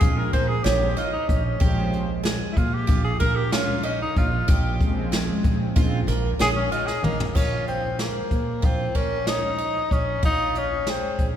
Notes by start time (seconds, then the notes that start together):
Already playing: G#4
0.01 A#1 C#3 F3 G#3 C4 F4, kick, closed hi-hat
0.17 A#4
0.33 A#1 A#3 C5, kick, closed hi-hat
0.48 G#4
0.63 A#1 C#4 G4, snare, closed hi-hat
0.97 D#4 F4, closed hi-hat
1.13 D#4
1.28 A#1 C#4, kick, closed hi-hat
1.60 A#1 C#3 F3 G#3 G4 C5, kick, closed hi-hat
1.93 closed hi-hat
2.23 G#4, snare, closed hi-hat
2.53 E4
2.57 A#2 F4, kick, closed hi-hat
2.74 G4
2.87 A#1 F4, kick, closed hi-hat
3.04 G#4
3.19 A#1 A#3 A#4, kick, closed hi-hat
3.35 G4
3.52 C#4 F4, snare, closed hi-hat
3.83 C#4 D#4, closed hi-hat
4.02 D#4
4.16 A#1 F4, kick, closed hi-hat
4.48 A#1 G4, kick, closed hi-hat
4.80 C#3 F3 G#3 C4, kick, closed hi-hat
5.12 G#4, snare, closed hi-hat
5.44 A#1, kick, closed hi-hat
5.76 A#1 C#3 F3 G#3 C4 F4, kick, closed hi-hat
6.07 A#1 A#3, snare, closed hi-hat
6.39 A#1 C#4 G#4, snare, closed hi-hat
6.56 C#4
6.71 D#4 F4, closed hi-hat
6.86 G#4, snare
7.03 A#1 A#3, mid tom
7.20 floor tom
7.35 A#1 C#4 F4, kick, crash
7.67 C4, closed hi-hat
7.99 A#3 G#4, snare, closed hi-hat
8.31 A#2, kick, closed hi-hat
8.62 A#1 C4 F4, kick, closed hi-hat
8.95 A#1 A#3 C#4, kick, closed hi-hat
9.27 C#4 D#4, snare, closed hi-hat
9.58 D#4, closed hi-hat
9.91 A#1 C#4, kick, closed hi-hat
10.23 A#1 D#4 F4, kick, closed hi-hat
10.55 C#4, closed hi-hat
10.87 C4 G#4, snare, closed hi-hat
11.19 A#1, kick, closed hi-hat